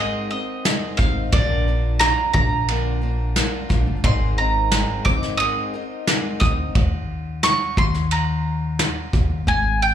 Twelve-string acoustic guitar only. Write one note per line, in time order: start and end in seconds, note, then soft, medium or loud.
0.00 0.31 G#3 medium
0.00 0.32 C4 medium
0.00 0.31 D#4 medium
0.00 0.30 A#4 medium
0.31 0.65 C4 soft
0.31 0.65 D#4 soft
0.31 0.65 A#4 medium
0.65 0.99 G#3 medium
0.65 0.99 C4 medium
0.65 0.99 D#4 medium
0.65 0.98 A#4 medium
0.99 1.34 C4 medium
0.99 1.33 D#4 medium
0.99 1.33 A#4 medium
1.32 1.66 A#2 medium
1.32 1.67 D3 medium
1.32 1.67 F3 medium
1.32 1.67 A#3 medium
1.32 1.67 D4 medium
1.32 1.67 A#4 loud
1.68 1.99 F3 soft
1.68 2.00 A#3 medium
1.68 2.00 D4 soft
1.68 2.01 A#4 medium
2.00 2.34 F3 medium
2.00 2.35 A#3 medium
2.00 2.35 D4 medium
2.00 2.34 A#4 medium
2.35 2.68 F3 soft
2.35 2.69 A#3 medium
2.35 2.69 D4 medium
2.35 2.68 A#4 medium
2.69 3.02 A#2 medium
2.69 3.03 D3 medium
2.69 3.03 F3 medium
2.69 3.02 A#3 medium
2.69 3.02 D4 medium
2.69 3.00 A#4 medium
3.02 3.35 F3 soft
3.02 3.35 A#3 soft
3.02 3.36 D4 soft
3.02 3.36 A#4 medium
3.36 3.70 F3 medium
3.36 3.70 A#3 medium
3.36 3.69 D4 medium
3.36 3.68 A#4 medium
3.69 4.04 F3 medium
3.69 4.04 A#3 medium
3.69 4.04 D4 medium
3.69 4.04 A#4 medium
4.04 4.38 G#3 medium
4.04 4.38 C4 medium
4.04 4.38 D#4 loud
4.04 4.37 A#4 medium
4.38 4.72 C4 soft
4.38 4.72 D#4 medium
4.38 4.72 A#4 medium
4.72 5.06 G#3 medium
4.72 5.06 C4 medium
4.72 5.07 D#4 medium
4.72 5.05 A#4 medium
5.07 5.40 C4 soft
5.07 5.40 D#4 medium
5.07 5.40 A#4 medium
5.41 5.74 G#3 medium
5.41 5.74 C4 medium
5.41 5.74 D#4 medium
5.41 5.72 A#4 medium
5.74 6.08 C4 soft
5.74 6.08 D#4 soft
5.74 6.08 A#4 medium
6.08 6.42 G#3 medium
6.08 6.42 C4 medium
6.08 6.42 D#4 medium
6.08 6.41 A#4 medium
6.42 6.77 C4 medium
6.42 6.76 D#4 medium
6.42 6.76 A#4 medium